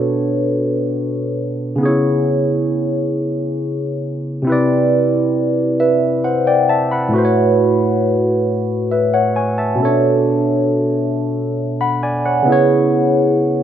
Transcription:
0.00 1.73 B2 medium
0.00 1.75 B3 medium
0.00 1.79 D4 medium
0.00 1.77 A4 medium
0.00 1.78 C#5 medium
1.76 4.40 C#3 medium
1.76 4.41 B3 medium
1.81 1.87 D#4 soft
1.81 4.44 G#4 medium
1.85 4.46 E4 medium
1.85 4.45 C#5 medium
4.42 7.07 C3 medium
4.42 7.08 C4 medium
4.47 7.09 E4 medium
4.47 5.79 B4 medium
4.52 5.80 D5 medium
5.80 6.22 B4 medium
5.80 6.22 E5 medium
6.24 6.46 C5 medium
6.24 6.45 F#5 medium
6.47 6.68 D5 medium
6.47 6.68 G5 medium
6.69 6.90 E5 medium
6.69 6.90 A5 medium
6.91 7.34 F#5 medium
6.91 7.33 B5 medium
7.08 9.73 A2 medium
7.08 9.75 A3 medium
7.14 9.76 F#4 medium
7.14 8.89 B4 medium
7.18 7.22 C5 medium
7.25 8.93 C#5 medium
8.91 9.13 B4 soft
8.91 9.12 E5 medium
9.14 9.35 C#5 medium
9.14 9.34 F#5 medium
9.36 9.57 C#5 medium
9.36 9.57 G#5 medium
9.58 10.00 E5 medium
9.58 10.00 A5 medium
9.75 12.40 B2 medium
9.75 12.41 B3 medium
9.80 9.86 C#4 soft
9.80 12.44 A4 medium
9.85 12.46 D4 medium
9.85 11.13 C#5 medium
11.81 12.01 F#5 medium
11.81 12.01 B5 medium
12.03 12.24 D5 medium
12.03 12.23 G#5 medium
12.26 12.51 C#5 medium
12.26 12.67 F#5 medium
12.42 13.63 C#3 medium
12.42 13.63 B3 medium
12.47 13.63 E4 medium
12.47 13.63 G#4 medium
12.52 13.63 C#5 medium

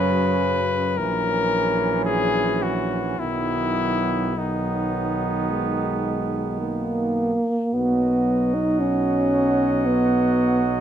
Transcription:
0.00 1.01 F#2 medium
0.00 1.00 C#3 medium
0.00 0.94 F#3 medium
0.00 0.95 C#4 medium
0.00 0.99 B4 medium
0.98 3.18 A#1 medium
0.98 3.19 E3 medium
0.98 3.01 F#3 medium
0.98 3.15 C#4 medium
0.98 2.05 A#4 loud
2.05 2.64 G#4 loud
2.62 3.21 F#4 medium
3.18 7.35 B1 medium
3.18 4.35 D#3 medium
3.18 4.34 F#3 medium
3.18 4.35 B3 medium
3.18 4.40 E4 loud
4.37 7.35 D#3 medium
4.37 5.51 F#3 medium
4.37 7.35 B3 medium
4.37 7.18 D#4 medium
5.50 6.59 G#3 medium
6.60 7.75 A#3 loud
7.73 10.80 B1 medium
7.73 10.80 F#3 medium
7.73 8.56 B3 loud
7.73 10.80 F#4 medium
7.73 10.80 D#5 medium
8.54 8.82 D#4 loud
8.80 9.88 C#4 loud
9.86 10.71 B3 medium

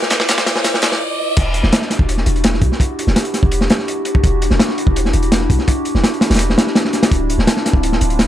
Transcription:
0.00 0.97 E4 medium
0.00 0.97 F4 medium
0.00 0.98 B4 medium
0.00 0.97 D5 medium
0.00 1.01 D6 medium
0.00 snare medium
0.00 closed hi-hat soft
0.00 riser medium
0.10 snare loud
0.10 snare medium
0.10 closed hi-hat medium
0.20 snare medium
0.20 snare loud
0.20 closed hi-hat medium
0.28 snare loud
0.28 closed hi-hat loud
0.28 closed hi-hat medium
0.38 snare medium
0.38 snare loud
0.38 closed hi-hat medium
0.38 closed hi-hat soft
0.46 snare loud
0.46 closed hi-hat medium
0.56 snare loud
0.64 snare loud
0.64 closed hi-hat medium
0.74 snare medium
0.82 snare loud
0.82 closed hi-hat medium
0.92 snare loud
0.92 closed hi-hat soft
1.36 1.62 E1 loud
1.36 8.27 D4 medium
1.36 8.27 E4 medium
1.36 7.07 F#4 medium
1.36 7.07 G4 medium
1.36 kick loud
1.36 closed hi-hat medium
1.36 crash medium
1.54 closed hi-hat medium
1.63 1.72 E1 medium
1.63 snare soft
1.72 snare loud
1.72 closed hi-hat medium
1.82 snare medium
1.90 snare medium
1.90 closed hi-hat medium
1.99 2.25 E1 loud
1.99 kick medium
2.09 closed hi-hat medium
2.17 snare soft
2.26 2.61 E1 medium
2.26 closed hi-hat medium
2.36 closed hi-hat soft
2.44 snare loud
2.44 closed hi-hat medium
2.54 snare soft
2.61 2.70 B1 medium
2.61 kick loud
2.61 closed hi-hat medium
2.72 snare soft
2.80 kick loud
2.80 closed hi-hat medium
2.99 closed hi-hat medium
3.07 3.15 E1 medium
3.07 snare soft
3.16 snare loud
3.16 closed hi-hat medium
3.25 closed hi-hat soft
3.34 snare soft
3.34 closed hi-hat medium
3.43 3.68 E1 loud
3.43 kick medium
3.52 closed hi-hat medium
3.61 snare medium
3.70 snare loud
3.70 closed hi-hat medium
3.79 snare medium
3.88 closed hi-hat medium
4.05 closed hi-hat medium
4.15 kick loud
4.24 4.49 E1 loud
4.24 kick loud
4.24 closed hi-hat medium
4.42 closed hi-hat medium
4.51 4.59 E1 medium
4.51 snare soft
4.59 snare loud
4.59 closed hi-hat medium
4.68 snare medium
4.78 closed hi-hat medium
4.87 5.12 E1 loud
4.87 kick loud
4.96 closed hi-hat loud
5.05 snare soft
5.13 5.48 E1 medium
5.13 closed hi-hat medium
5.23 closed hi-hat soft
5.32 snare loud
5.32 closed hi-hat medium
5.41 snare soft
5.50 5.58 B1 medium
5.50 kick loud
5.50 closed hi-hat medium
5.59 snare soft
5.68 kick loud
5.68 closed hi-hat medium
5.85 closed hi-hat medium
5.95 6.03 E1 medium
5.95 snare soft
6.04 snare loud
6.04 closed hi-hat medium
6.14 closed hi-hat soft
6.21 snare loud
6.21 closed hi-hat medium
6.30 6.56 E1 loud
6.30 snare medium
6.30 closed hi-hat medium
6.34 snare medium
6.34 closed hi-hat medium
6.39 closed hi-hat loud
6.50 snare soft
6.58 snare loud
6.58 closed hi-hat medium
6.67 snare medium
6.75 snare loud
6.75 closed hi-hat medium
6.85 snare soft
6.93 snare soft
6.93 closed hi-hat medium
7.03 snare loud
7.03 closed hi-hat medium
7.11 7.37 D1 loud
7.11 8.27 C4 medium
7.11 8.27 F4 medium
7.11 kick loud
7.11 closed hi-hat medium
7.30 closed hi-hat medium
7.38 7.46 D1 medium
7.38 snare soft
7.47 snare loud
7.47 closed hi-hat medium
7.57 snare medium
7.66 snare soft
7.66 closed hi-hat medium
7.73 7.99 D1 loud
7.73 kick loud
7.83 closed hi-hat medium
7.92 snare soft
8.01 8.27 D1 medium
8.01 closed hi-hat medium
8.10 closed hi-hat soft
8.19 snare loud
8.19 closed hi-hat medium

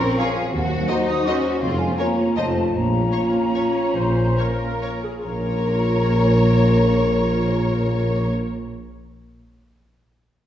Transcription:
0.00 0.18 C4 medium
0.00 0.19 A#4 medium
0.00 0.18 C6 medium
0.18 0.53 F3 medium
0.18 0.26 F4 medium
0.18 0.32 F4 medium
0.18 0.52 G#4 medium
0.18 0.26 A#4 soft
0.18 0.27 C#5 medium
0.18 0.32 C#5 medium
0.18 0.52 F5 medium
0.52 0.82 D#2 medium
0.52 1.06 F#3 medium
0.52 1.57 F#4 medium
0.52 0.88 F#4 medium
0.52 1.57 C5 medium
0.52 0.83 F#5 medium
0.88 1.26 D#4 medium
0.88 0.97 F#4 soft
0.88 0.97 C5 soft
0.88 0.97 D#5 soft
1.08 1.26 D#4 medium
1.08 1.26 D#6 medium
1.25 1.62 C#4 medium
1.25 1.61 F#4 medium
1.25 1.35 F#4 soft
1.25 1.35 C5 soft
1.25 1.34 D#5 soft
1.25 1.61 C#6 medium
1.60 1.91 F1 medium
1.60 1.91 F2 soft
1.60 1.79 C4 medium
1.60 1.95 F4 soft
1.60 1.97 F4 medium
1.60 1.94 C#5 soft
1.60 1.79 C6 medium
1.79 1.90 G#3 medium
1.79 1.98 G#5 medium
1.91 1.98 C4 soft
1.95 2.37 A#3 medium
1.95 2.36 C#4 medium
1.95 2.34 F4 soft
1.95 2.06 F4 soft
1.95 2.06 A#4 soft
1.95 2.34 C#5 soft
1.95 2.07 C#5 soft
1.95 2.36 A#5 soft
2.35 2.67 F1 soft
2.35 2.67 F2 soft
2.35 2.74 A3 medium
2.35 2.74 C4 soft
2.35 2.45 F4 soft
2.35 2.73 F4 soft
2.35 2.74 C5 soft
2.35 2.45 C5 soft
2.35 2.44 D#5 soft
2.35 2.73 A5 soft
2.74 3.06 A#1 soft
2.74 4.81 A#3 medium
2.74 5.04 C#4 soft
2.74 5.00 F4 soft
2.74 5.04 C#5 soft
2.74 4.77 A#5 medium
3.12 3.71 F4 soft
3.12 3.20 C#5 soft
3.55 3.63 C#5 soft
3.75 3.95 C#5 medium
3.95 4.29 A#1 soft
3.95 4.36 C5 soft
4.37 5.03 A#4 medium
4.37 4.46 C#5 soft
4.82 4.90 C#5 soft
5.04 5.25 G#4 soft
5.24 8.27 A#1 soft
5.24 8.27 A#3 medium
5.24 8.26 C#4 soft
5.24 8.28 F4 soft
5.24 8.27 A#4 soft
5.24 8.28 A#4 soft
5.24 8.27 C#5 soft
5.24 8.26 A#5 soft

